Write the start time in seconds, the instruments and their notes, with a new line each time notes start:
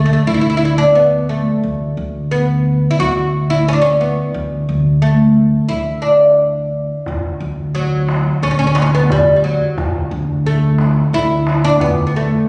Already playing: upright bass D2
0.06 oud A3
0.13 oud A3
0.27 upright bass D2, oud E4
0.34 oud E4
0.41 oud E4
0.50 oud E4
0.57 oud E4
0.65 oud E4
0.78 oud D4
0.95 oud B3
1.29 oud A3
1.63 upright bass D2
1.97 upright bass D2
2.31 oud B3
2.91 oud E4
2.99 upright bass D2, oud F#4
3.50 oud E4
3.68 oud C#4
3.73 oud D4
3.82 oud C#4
4.01 oud B3
4.34 upright bass D2
4.69 upright bass D2
5.02 oud A3
5.69 upright bass D2, oud E4
6.02 oud D4
7.06 upright bass D2, tombak dum
7.24 tombak ka
7.40 upright bass D2, tombak ka
7.74 oud F#3, tombak ka
7.92 tombak ka
8.09 tombak tek
8.25 tombak ka
8.42 upright bass D2, oud C#4, tombak ka
8.51 oud C#4
8.59 oud C#4
8.67 oud C#4
8.75 oud C#4, tombak tek
8.82 oud C#4
8.93 oud B3, tombak ka
9.10 oud G3, tombak dum
9.27 tombak ka
9.36 oud G3
9.44 oud F#3
9.78 upright bass D2, tombak dum
9.94 tombak ka
10.11 upright bass D2, tombak ka
10.45 oud A3, tombak ka
10.62 tombak ka
10.78 tombak tek
10.96 tombak ka
11.13 upright bass D2, oud E4, tombak ka
11.47 tombak tek
11.65 oud D4
11.80 oud B3, tombak dum
11.97 tombak ka
12.07 oud B3
12.16 oud A3